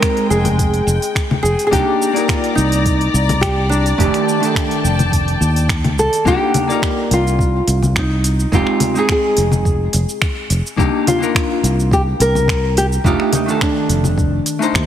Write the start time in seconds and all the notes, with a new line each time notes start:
Already playing: G#3 C4 D#4 G#4 A#4 G5
0.02 finger snap, kick, open hi-hat, shaker
0.17 open hi-hat
0.30 F1 G#4, shaker
0.45 open hi-hat, low conga, shaker
0.59 kick, open hi-hat, shaker
0.74 open hi-hat
0.87 F1, shaker
1.02 open hi-hat, shaker
1.15 finger snap, kick, open hi-hat, shaker
1.31 low conga
1.43 F1 G#4, shaker
1.59 open hi-hat, shaker
1.67 G#4
1.71 C2 A#3 D4 D#4 G4 D5 A#5, kick, open hi-hat, shaker
2.02 shaker
2.13 A#3 D#4 D5, open hi-hat, shaker
2.18 A#4
2.28 F4, finger snap, kick, open hi-hat, shaker
2.44 open hi-hat
2.55 C2 D#4, shaker
2.72 open hi-hat, shaker
2.85 kick, open hi-hat, shaker
3.01 open hi-hat
3.14 C2, shaker
3.29 open hi-hat, low conga, shaker
3.41 G4, finger snap, kick, open hi-hat, shaker
3.69 D4, shaker
3.86 open hi-hat, shaker
3.98 F1 D#3 A3 D4 G4 G5 A5, kick, open hi-hat, shaker
4.14 finger snap, open hi-hat
4.29 shaker
4.40 D#3 A3 D4, open hi-hat, shaker
4.45 A4
4.55 finger snap, kick, open hi-hat, shaker
4.71 open hi-hat
4.84 F1, shaker
4.99 open hi-hat, low conga, shaker
5.12 kick, open hi-hat, shaker
5.28 open hi-hat
5.41 D#2, shaker
5.56 open hi-hat, shaker
5.69 finger snap, kick, open hi-hat, shaker
5.84 open hi-hat, low conga
5.98 C2 A4, shaker
6.13 open hi-hat, shaker
6.25 C2 A#3 D4 D#4 G4, kick, shaker
6.54 open hi-hat, low conga, shaker
6.68 A#3 D#4 D5, shaker
6.72 A#4
6.82 finger snap, kick, shaker
7.11 C2 F4, open hi-hat, shaker
7.27 shaker
7.39 kick, shaker
7.67 C2, open hi-hat, shaker
7.83 low conga, shaker
7.96 D#4, finger snap, kick, shaker
8.24 open hi-hat, shaker
8.40 shaker
8.52 F1 G#3 C4 D#4 F4 G4, kick, shaker
8.67 finger snap
8.80 open hi-hat, low conga, shaker
8.94 G#3 C4 D#4, shaker
8.98 G#4
9.09 G#4, finger snap, kick, shaker
9.37 F1, open hi-hat, shaker
9.52 low conga, shaker
9.65 kick, shaker
9.93 F1, open hi-hat, shaker
10.09 shaker
10.22 finger snap, kick, shaker
10.50 F1, open hi-hat, shaker
10.67 shaker
10.77 C2 A#3 D4 D#4 G4, kick, shaker
11.07 F4, open hi-hat, low conga, shaker
11.19 A#3 D4 D#4
11.23 A#4, shaker
11.35 finger snap, kick, shaker
11.63 C2, open hi-hat, shaker
11.80 shaker
11.91 G4, kick, shaker
12.20 C2 A#4, open hi-hat, shaker
12.35 low conga, shaker
12.48 finger snap, kick, shaker
12.77 G4, open hi-hat, shaker
12.92 shaker
13.04 F1 A3 D4 D#4 F4 G4, kick, shaker
13.20 finger snap
13.33 D#4, open hi-hat, low conga, shaker
13.46 D#3 A3 D4, shaker
13.50 A4
13.61 D4, finger snap, kick, shaker
13.89 F1, open hi-hat, shaker
14.04 low conga, shaker
14.18 kick, shaker
14.46 open hi-hat, shaker
14.59 A3 D4 D#4, shaker
14.63 C5
14.74 D#2, finger snap, kick, shaker